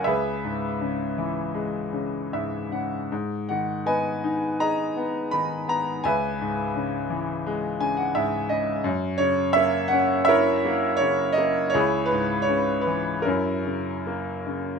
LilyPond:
<<
  \new Staff \with { instrumentName = "Grand piano" } { \time 4/4 \key cis \dorian \tempo 4 = 82 << { e''2 r4 e''8 fis''8 | r8 fis''8 gis''4 ais''4 b''8 ais''8 | gis''2 r8 gis''16 fis''16 e''8 dis''8 | r8 cis''8 e''8 fis''8 e''4 cis''8 dis''8 |
cis''8 b'8 cis''8 b'8 ais'4. r8 | } \\ { <gis' b'>2 r2 | r4 <b' dis''>4 dis''2 | <b' e''>2 r2 | r2 <ais' cis''>2 |
<e' gis'>2 <cis' e'>2 | } >> }
  \new Staff \with { instrumentName = "Grand piano" } { \clef bass \time 4/4 \key cis \dorian cis,8 gis,8 cis8 e8 gis8 cis8 gis,8 cis8 | gis,8 dis8 b8 dis'8 gis'8 b8 dis8 b8 | cis,8 gis,8 cis8 e8 gis8 cis8 gis,8 cis8 | fis,8 cis8 ais8 cis'8 e'8 ais8 cis8 ais8 |
cis,8 gis,8 cis8 e8 fis,8 cis8 ais8 cis8 | }
>>